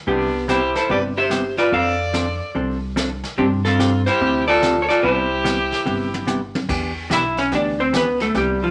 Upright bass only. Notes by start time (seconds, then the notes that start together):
0.07 C2
0.90 G1
1.72 F2
2.55 C2
3.38 G2
4.21 D2
5.04 C2
5.86 G1
6.69 E2
7.10 B1
7.52 D2
7.93 C#2
8.35 C2